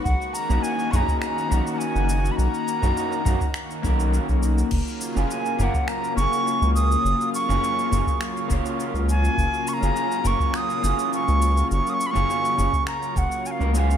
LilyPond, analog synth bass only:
\new Staff \with { instrumentName = "Analog synth bass" } { \clef bass \time 4/4 \key fis \major \tempo 4 = 103 b,,16 r8 b,,16 r8 b,,16 r8. b,,16 r8 fis,,8 r16 | b,,16 r8 b,,16 r8 b,,16 r8. b,,8 r16 b,,8 r16 | fis,,16 r8 fis,,16 r8 fis,,16 r8. fis,,16 r8 cis,8 r16 | fis,,16 r8 fis,,16 r8 fis,,16 r8. fis,,16 r8 cis,8 r16 |
fis,,16 r8 fis,,16 r8 fis,,16 r8. fis,,16 r8 cis,8 r16 | fis,,16 r8 fis,,16 r8 fis,,16 r8. fis,,16 r8 cis,8 r16 | }